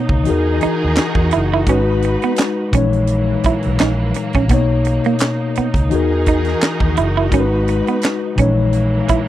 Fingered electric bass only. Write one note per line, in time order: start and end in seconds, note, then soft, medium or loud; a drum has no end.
0.10 0.24 C#2 medium
0.30 0.59 E2 loud
0.65 muted fingered electric bass stroke soft
0.84 0.97 D#2 medium
1.16 1.30 E2 medium
1.36 1.65 F#1 medium
1.68 2.15 G#1 loud
2.74 3.35 A#1 medium
3.45 muted fingered electric bass stroke soft
3.66 3.79 B1 medium
3.81 4.11 A#1 loud
4.36 4.51 A#1 medium
4.51 4.98 B1 loud
5.58 muted fingered electric bass stroke soft
5.75 5.89 C#2 medium
5.93 6.54 E2 loud
6.81 6.95 D#2 medium
6.98 7.28 F#1 medium
7.33 7.80 G#1 loud
8.39 9.00 A#1 medium
9.10 muted fingered electric bass stroke soft